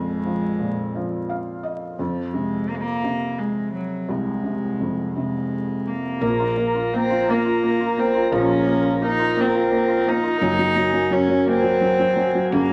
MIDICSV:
0, 0, Header, 1, 5, 480
1, 0, Start_track
1, 0, Tempo, 700935
1, 1368, Time_signature, 6, 3, 24, 8
1, 8717, End_track
2, 0, Start_track
2, 0, Title_t, "Tonewheel organ"
2, 0, Program_c, 0, 16
2, 4253, Note_on_c, 0, 82, 59
2, 4257, Note_on_c, 0, 65, 61
2, 4257, Note_on_c, 0, 70, 54
2, 7105, Note_off_c, 0, 82, 0
2, 7107, Note_off_c, 0, 65, 0
2, 7107, Note_off_c, 0, 70, 0
2, 7136, Note_on_c, 0, 70, 58
2, 7142, Note_on_c, 0, 80, 62
2, 7143, Note_on_c, 0, 66, 62
2, 8717, Note_off_c, 0, 66, 0
2, 8717, Note_off_c, 0, 70, 0
2, 8717, Note_off_c, 0, 80, 0
2, 8717, End_track
3, 0, Start_track
3, 0, Title_t, "Cello"
3, 0, Program_c, 1, 42
3, 0, Note_on_c, 1, 56, 76
3, 891, Note_off_c, 1, 56, 0
3, 1371, Note_on_c, 1, 53, 78
3, 1601, Note_on_c, 1, 56, 80
3, 1611, Note_off_c, 1, 53, 0
3, 1841, Note_on_c, 1, 58, 85
3, 1851, Note_off_c, 1, 56, 0
3, 1885, Note_on_c, 1, 56, 74
3, 1895, Note_off_c, 1, 58, 0
3, 1926, Note_on_c, 1, 58, 100
3, 1936, Note_off_c, 1, 56, 0
3, 2319, Note_on_c, 1, 56, 80
3, 2329, Note_off_c, 1, 58, 0
3, 2562, Note_off_c, 1, 56, 0
3, 2568, Note_on_c, 1, 54, 67
3, 2812, Note_on_c, 1, 56, 75
3, 2822, Note_off_c, 1, 54, 0
3, 3529, Note_off_c, 1, 56, 0
3, 3534, Note_on_c, 1, 56, 73
3, 4024, Note_on_c, 1, 58, 79
3, 4034, Note_off_c, 1, 56, 0
3, 4748, Note_on_c, 1, 60, 102
3, 4758, Note_off_c, 1, 58, 0
3, 4996, Note_on_c, 1, 58, 89
3, 5007, Note_off_c, 1, 60, 0
3, 5475, Note_on_c, 1, 60, 94
3, 5486, Note_off_c, 1, 58, 0
3, 5709, Note_off_c, 1, 60, 0
3, 5725, Note_on_c, 1, 61, 96
3, 6166, Note_off_c, 1, 61, 0
3, 6201, Note_on_c, 1, 63, 109
3, 6439, Note_on_c, 1, 60, 97
3, 6449, Note_off_c, 1, 63, 0
3, 6906, Note_on_c, 1, 63, 114
3, 6916, Note_off_c, 1, 60, 0
3, 7617, Note_on_c, 1, 61, 99
3, 7627, Note_off_c, 1, 63, 0
3, 7862, Note_on_c, 1, 60, 112
3, 7872, Note_off_c, 1, 61, 0
3, 8579, Note_off_c, 1, 60, 0
3, 8585, Note_on_c, 1, 58, 102
3, 8717, Note_off_c, 1, 58, 0
3, 8717, End_track
4, 0, Start_track
4, 0, Title_t, "Felt piano"
4, 0, Program_c, 2, 0
4, 0, Control_c, 2, 64, 127
4, 0, Note_on_c, 2, 41, 54
4, 0, Note_on_c, 2, 46, 40
4, 0, Note_on_c, 2, 53, 47
4, 149, Note_off_c, 2, 53, 0
4, 171, Note_on_c, 2, 53, 44
4, 408, Note_off_c, 2, 46, 0
4, 408, Note_on_c, 2, 46, 42
4, 640, Note_off_c, 2, 53, 0
4, 650, Note_on_c, 2, 53, 47
4, 886, Note_on_c, 2, 77, 54
4, 1110, Note_off_c, 2, 77, 0
4, 1118, Note_on_c, 2, 75, 54
4, 1338, Note_off_c, 2, 46, 0
4, 1340, Note_off_c, 2, 41, 0
4, 1345, Note_off_c, 2, 75, 0
4, 1346, Note_off_c, 2, 53, 0
4, 1362, Note_on_c, 2, 41, 57
4, 1376, Control_c, 2, 64, 0
4, 1501, Control_c, 2, 64, 127
4, 1598, Note_on_c, 2, 48, 44
4, 2068, Note_off_c, 2, 48, 0
4, 2078, Note_on_c, 2, 48, 48
4, 2775, Note_off_c, 2, 41, 0
4, 2797, Note_on_c, 2, 36, 56
4, 3015, Note_off_c, 2, 48, 0
4, 3039, Note_on_c, 2, 48, 42
4, 3290, Note_on_c, 2, 41, 43
4, 3523, Note_off_c, 2, 48, 0
4, 3533, Note_on_c, 2, 48, 48
4, 4226, Note_off_c, 2, 36, 0
4, 4231, Note_off_c, 2, 41, 0
4, 4237, Note_off_c, 2, 48, 0
4, 4251, Note_on_c, 2, 58, 62
4, 4267, Control_c, 2, 64, 0
4, 4379, Note_on_c, 2, 65, 55
4, 4399, Control_c, 2, 64, 127
4, 4483, Note_off_c, 2, 58, 0
4, 4494, Note_on_c, 2, 58, 52
4, 4614, Note_off_c, 2, 65, 0
4, 4624, Note_on_c, 2, 65, 45
4, 4735, Note_off_c, 2, 58, 0
4, 4746, Note_on_c, 2, 58, 52
4, 4854, Note_off_c, 2, 65, 0
4, 4864, Note_on_c, 2, 65, 50
4, 4975, Note_off_c, 2, 58, 0
4, 4985, Note_on_c, 2, 58, 67
4, 5093, Note_off_c, 2, 65, 0
4, 5104, Note_on_c, 2, 65, 52
4, 5217, Note_off_c, 2, 58, 0
4, 5227, Note_on_c, 2, 58, 54
4, 5334, Note_off_c, 2, 65, 0
4, 5344, Note_on_c, 2, 65, 51
4, 5448, Note_off_c, 2, 58, 0
4, 5459, Note_on_c, 2, 58, 54
4, 5568, Note_off_c, 2, 65, 0
4, 5579, Note_on_c, 2, 65, 46
4, 5693, Note_on_c, 2, 53, 73
4, 5801, Note_off_c, 2, 65, 0
4, 5811, Note_on_c, 2, 65, 57
4, 5923, Note_off_c, 2, 58, 0
4, 5933, Note_on_c, 2, 58, 57
4, 6042, Note_off_c, 2, 65, 0
4, 6052, Note_on_c, 2, 65, 48
4, 6161, Note_off_c, 2, 58, 0
4, 6171, Note_on_c, 2, 58, 53
4, 6284, Note_off_c, 2, 65, 0
4, 6294, Note_on_c, 2, 65, 52
4, 6400, Note_off_c, 2, 58, 0
4, 6411, Note_on_c, 2, 58, 74
4, 6518, Note_off_c, 2, 65, 0
4, 6528, Note_on_c, 2, 65, 52
4, 6641, Note_off_c, 2, 58, 0
4, 6652, Note_on_c, 2, 58, 58
4, 6759, Note_off_c, 2, 65, 0
4, 6769, Note_on_c, 2, 65, 49
4, 6876, Note_off_c, 2, 58, 0
4, 6886, Note_on_c, 2, 58, 52
4, 6997, Note_off_c, 2, 65, 0
4, 7007, Note_on_c, 2, 65, 55
4, 7102, Note_off_c, 2, 53, 0
4, 7122, Note_off_c, 2, 58, 0
4, 7127, Note_off_c, 2, 65, 0
4, 7130, Note_on_c, 2, 54, 69
4, 7145, Control_c, 2, 64, 0
4, 7239, Note_off_c, 2, 54, 0
4, 7250, Note_on_c, 2, 54, 58
4, 7256, Control_c, 2, 64, 127
4, 7359, Note_off_c, 2, 54, 0
4, 7370, Note_on_c, 2, 54, 57
4, 7476, Note_off_c, 2, 54, 0
4, 7486, Note_on_c, 2, 54, 48
4, 7595, Note_off_c, 2, 54, 0
4, 7605, Note_on_c, 2, 54, 55
4, 7719, Note_off_c, 2, 54, 0
4, 7729, Note_on_c, 2, 54, 56
4, 7850, Note_on_c, 2, 58, 71
4, 7954, Note_off_c, 2, 54, 0
4, 7965, Note_on_c, 2, 54, 53
4, 8078, Note_off_c, 2, 54, 0
4, 8088, Note_on_c, 2, 54, 59
4, 8203, Note_off_c, 2, 54, 0
4, 8213, Note_on_c, 2, 54, 56
4, 8320, Note_off_c, 2, 54, 0
4, 8330, Note_on_c, 2, 54, 57
4, 8446, Note_off_c, 2, 54, 0
4, 8457, Note_on_c, 2, 54, 49
4, 8578, Note_on_c, 2, 49, 72
4, 8688, Note_off_c, 2, 54, 0
4, 8717, Note_off_c, 2, 49, 0
4, 8717, Note_off_c, 2, 58, 0
4, 8717, End_track
5, 0, Start_track
5, 0, Title_t, "Fretless electric bass"
5, 0, Program_c, 3, 35
5, 4255, Note_on_c, 3, 34, 85
5, 5675, Note_off_c, 3, 34, 0
5, 5699, Note_on_c, 3, 34, 100
5, 7106, Note_off_c, 3, 34, 0
5, 7132, Note_on_c, 3, 30, 103
5, 8545, Note_off_c, 3, 30, 0
5, 8575, Note_on_c, 3, 30, 101
5, 8717, Note_off_c, 3, 30, 0
5, 8717, End_track
0, 0, End_of_file